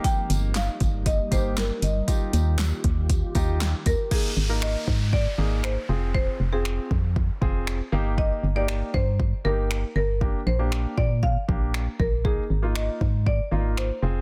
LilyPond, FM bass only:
\new Staff \with { instrumentName = "FM bass" } { \clef bass \time 4/4 \key ees \major \tempo 4 = 118 r8 g,,4 g,,4 g,,4 g,,8 | r8 ees,4 ees,4 ees,4 ees,16 r16 | r8 aes,,4 aes,4 aes,,4 f,,8~ | f,,8 f,,4 f,4 f,,4 g,,8~ |
g,,8 g,,4 g,4 g,,4 g,,8~ | g,,8 bes,,4 bes,4 bes,,4 bes,,8~ | bes,,8 aes,,4 aes,4 aes,,4 f,,8 | }